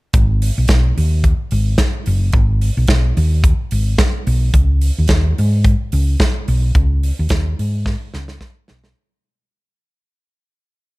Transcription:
0.13 fingered electric bass G#1, kick, closed hi-hat
0.42 open hi-hat
0.58 fingered electric bass B1
0.68 fingered electric bass B1, kick, snare, closed hi-hat
0.97 fingered electric bass D#2, open hi-hat
1.24 kick, closed hi-hat
1.51 fingered electric bass G#1, open hi-hat
1.78 kick, snare, closed hi-hat
2.06 fingered electric bass F#1, open hi-hat
2.33 fingered electric bass G#1, kick, closed hi-hat
2.62 open hi-hat
2.77 fingered electric bass B1
2.88 kick, snare, closed hi-hat
3.17 fingered electric bass D#2, open hi-hat
3.44 kick, closed hi-hat
3.71 fingered electric bass G#1, open hi-hat
3.98 kick, snare, closed hi-hat
4.27 fingered electric bass B1, open hi-hat
4.54 fingered electric bass C#2, kick, closed hi-hat
4.81 open hi-hat
4.98 fingered electric bass D#2
5.08 fingered electric bass D#2, kick, snare, closed hi-hat
5.38 fingered electric bass G#2, open hi-hat
5.64 kick, closed hi-hat
5.92 fingered electric bass C#2, open hi-hat
6.20 kick, snare, closed hi-hat
6.48 fingered electric bass B1, open hi-hat
6.75 fingered electric bass C#2, kick, closed hi-hat
7.03 open hi-hat
7.19 fingered electric bass D#2
7.29 fingered electric bass D#2, kick, snare, closed hi-hat
7.59 fingered electric bass G#2, open hi-hat
7.86 kick, snare
8.14 fingered electric bass C#2, snare
8.28 snare
8.41 kick, snare
8.68 fingered electric bass B1, snare
8.84 snare

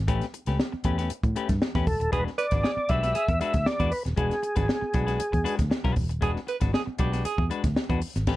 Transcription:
0.08 fingered electric bass A1, clean electric guitar A3 C#4 G4 B4, kick, closed hi-hat
0.21 snare, closed hi-hat
0.34 muted clean electric guitar stroke, closed hi-hat
0.46 fingered electric bass C#2, clean electric guitar A3 C#4 G4 B4, snare, closed hi-hat
0.60 snare
0.72 muted clean electric guitar stroke, muted fingered electric bass stroke
0.84 fingered electric bass E2, clean electric guitar A3 C#4 G4 B4, kick, closed hi-hat
0.98 clean electric guitar A3 C#4 G4 B4, snare, closed hi-hat
1.10 muted fingered electric bass stroke, closed hi-hat
1.23 fingered electric bass A2, muted clean electric guitar stroke, kick, closed hi-hat
1.36 clean electric guitar A3 C#4 G4 B4, closed hi-hat
1.49 fingered electric bass G2, muted clean electric guitar stroke, kick, snare, closed hi-hat
1.62 muted clean electric guitar stroke, snare
1.75 fingered electric bass E2, clean electric guitar A3 C#4 G4 B4, kick, snare, closed hi-hat
1.87 fingered electric bass E1, tonewheel organ A4, muted clean electric guitar stroke, kick, open hi-hat
2.00 fingered electric bass D#1, muted clean electric guitar stroke, closed hi-hat
2.12 fingered electric bass E1, clean electric guitar G#3 D4 F#4 B4, tenor saxophone G#4, tonewheel organ B4, kick, closed hi-hat
2.27 snare
2.38 tenor saxophone B4, tonewheel organ D5, muted clean electric guitar stroke, closed hi-hat
2.51 fingered electric bass G#1, clean electric guitar G#3 D4 F#4 B4, kick, snare, closed hi-hat
2.64 tenor saxophone G#4, snare
2.77 muted fingered electric bass stroke, muted clean electric guitar stroke
2.89 fingered electric bass B1, clean electric guitar G#3 D4 F#4 B4, tenor saxophone G4, tonewheel organ E5, kick, closed hi-hat
3.03 clean electric guitar G#3 D4 F#4 B4, snare, closed hi-hat
3.15 tenor saxophone G#4, muted fingered electric bass stroke, closed hi-hat
3.28 fingered electric bass E2, muted clean electric guitar stroke, kick, closed hi-hat
3.41 clean electric guitar G#3 D4 F#4 B4, tonewheel organ E5, closed hi-hat
3.54 fingered electric bass D2, muted clean electric guitar stroke, kick, snare, closed hi-hat
3.66 tonewheel organ D5, muted clean electric guitar stroke, snare
3.80 fingered electric bass E2, clean electric guitar G#3 D4 F#4 B4, kick, closed hi-hat
3.91 tonewheel organ B4, open hi-hat
4.05 fingered electric bass D#1, muted clean electric guitar stroke, snare, closed hi-hat
4.16 fingered electric bass E1, clean electric guitar G#3 D4 F#4 B4, tonewheel organ G#4, kick, closed hi-hat
4.31 snare, closed hi-hat
4.43 muted clean electric guitar stroke, closed hi-hat
4.56 fingered electric bass G#1, clean electric guitar G#3 D4 F#4 B4, tonewheel organ G#4, kick, snare, closed hi-hat
4.69 snare
4.81 muted clean electric guitar stroke, muted fingered electric bass stroke
4.94 fingered electric bass B1, clean electric guitar G#3 D4 F#4 B4, kick, closed hi-hat
5.07 clean electric guitar G#3 D4 F#4 B4, snare, closed hi-hat
5.20 muted fingered electric bass stroke, closed hi-hat
5.32 fingered electric bass E2, muted clean electric guitar stroke, kick, closed hi-hat
5.44 clean electric guitar G#3 D4 F#4 B4, closed hi-hat
5.58 fingered electric bass D2, muted clean electric guitar stroke, kick, snare, closed hi-hat
5.70 muted clean electric guitar stroke, snare
5.84 fingered electric bass B1, clean electric guitar G#3 D4 F#4 B4, kick, snare
5.96 fingered electric bass E1, kick, open hi-hat
6.09 fingered electric bass D#1, muted clean electric guitar stroke, closed hi-hat
6.21 fingered electric bass E1, clean electric guitar G#3 D4 F#4 B4, tenor saxophone G#4, kick, closed hi-hat
6.36 snare
6.47 tenor saxophone B4, muted clean electric guitar stroke, closed hi-hat
6.60 fingered electric bass G#1, clean electric guitar G#3 D4 F#4 B4, kick, snare, closed hi-hat
6.73 tenor saxophone G#4, muted clean electric guitar stroke, snare
6.86 muted clean electric guitar stroke, muted fingered electric bass stroke
6.98 fingered electric bass B1, clean electric guitar G#3 D4 F#4 B4, tenor saxophone G4, kick, closed hi-hat
7.12 clean electric guitar G#3 D4 F#4 B4, snare, closed hi-hat
7.25 tenor saxophone G#4, muted fingered electric bass stroke, closed hi-hat
7.38 fingered electric bass E2, muted clean electric guitar stroke, kick
7.50 clean electric guitar G#3 D4 F#4 B4, closed hi-hat
7.64 fingered electric bass D2, muted clean electric guitar stroke, kick, snare, closed hi-hat
7.76 muted clean electric guitar stroke, snare
7.89 fingered electric bass E2, clean electric guitar G#3 D4 F#4 B4, kick, closed hi-hat
8.02 open hi-hat
8.16 fingered electric bass G#1, muted clean electric guitar stroke, snare, closed hi-hat
8.27 fingered electric bass A1, clean electric guitar A3 C#4 G4 B4, kick, snare, crash

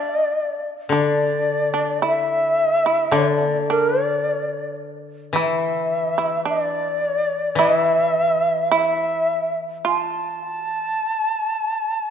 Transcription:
Already playing: shamisen D4, shakuhachi D5
0.89 koto D3, shamisen D4
0.95 shakuhachi D5
1.74 shamisen D4
2.02 shamisen E4, shakuhachi E5
2.86 shamisen E4
3.11 koto D3, shamisen D4
3.15 shakuhachi D5
3.47 shamisen A#3
3.70 shamisen D4, shakuhachi A#4
4.04 shakuhachi D5
5.33 koto E3, shamisen E4, shakuhachi E5
6.18 shamisen E4
6.45 shamisen D4, shakuhachi D5
7.55 koto E3, shamisen E4
7.61 shakuhachi E5
8.72 shamisen E4, shakuhachi E5
9.85 shamisen F4, shakuhachi A5
10.38 shamisen F#4
10.58 shamisen G4
10.78 shamisen G#4
10.99 shamisen A4

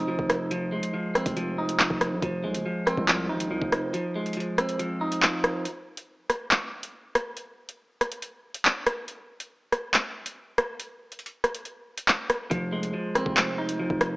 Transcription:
Already playing: 808-style bass F1, clean electric guitar C4 D#4
0.08 clean electric guitar F3
0.19 808-style bass F1, kick
0.30 cross-stick, closed hi-hat
0.51 clean electric guitar F3, closed hi-hat
0.72 clean electric guitar G#3
0.83 closed hi-hat
0.94 clean electric guitar F3
1.15 clean electric guitar C4, cross-stick, closed hi-hat
1.26 808-style bass F1, kick, closed hi-hat
1.37 clean electric guitar F3, closed hi-hat
1.58 clean electric guitar D#4
1.69 closed hi-hat
1.79 clean electric guitar F3, clap
1.90 808-style bass F1, kick
2.01 cross-stick, closed hi-hat
2.12 808-style bass C2
2.22 808-style bass F1, clean electric guitar F3, kick, closed hi-hat
2.44 808-style bass C2, clean electric guitar G#3
2.54 808-style bass F1, closed hi-hat
2.66 clean electric guitar F3
2.86 clean electric guitar C4, cross-stick, closed hi-hat
2.97 808-style bass C2, kick
3.08 clean electric guitar F3, clap, closed hi-hat
3.29 808-style bass G#1, clean electric guitar D#4
3.40 closed hi-hat
3.46 808-style bass C2
3.51 clean electric guitar F3
3.62 808-style bass F1, kick
3.72 cross-stick, closed hi-hat
3.94 clean electric guitar F3, closed hi-hat
4.15 clean electric guitar G#3
4.26 closed hi-hat
4.33 clean electric guitar F3, closed hi-hat
4.40 closed hi-hat
4.58 clean electric guitar C4, cross-stick, closed hi-hat
4.69 closed hi-hat
4.79 clean electric guitar F3, closed hi-hat
5.01 clean electric guitar D#4
5.12 closed hi-hat
5.22 clean electric guitar F3, clap
5.44 cross-stick, closed hi-hat
5.65 closed hi-hat
5.97 closed hi-hat
6.30 cross-stick, closed hi-hat
6.51 clap, closed hi-hat
6.83 closed hi-hat
7.15 cross-stick, closed hi-hat
7.37 closed hi-hat
7.69 closed hi-hat
8.01 cross-stick, closed hi-hat
8.12 closed hi-hat
8.22 closed hi-hat
8.55 closed hi-hat
8.65 clap
8.87 cross-stick, closed hi-hat
9.08 closed hi-hat
9.40 closed hi-hat
9.72 cross-stick, closed hi-hat
9.94 clap, closed hi-hat
10.26 closed hi-hat
10.58 cross-stick, closed hi-hat
10.80 closed hi-hat
11.12 closed hi-hat
11.19 closed hi-hat
11.26 closed hi-hat
11.44 cross-stick, closed hi-hat
11.54 closed hi-hat
11.65 closed hi-hat
11.97 closed hi-hat
12.08 clap
12.29 cross-stick, closed hi-hat
12.51 808-style bass F1, clean electric guitar F3, kick, closed hi-hat
12.72 clean electric guitar G#3
12.83 closed hi-hat
12.94 clean electric guitar F3
13.15 clean electric guitar C4, cross-stick, closed hi-hat
13.26 808-style bass F1, kick
13.37 clean electric guitar F3, clap, closed hi-hat
13.58 clean electric guitar D#4
13.69 closed hi-hat
13.80 clean electric guitar F3
13.90 808-style bass F1, kick
14.01 cross-stick, closed hi-hat

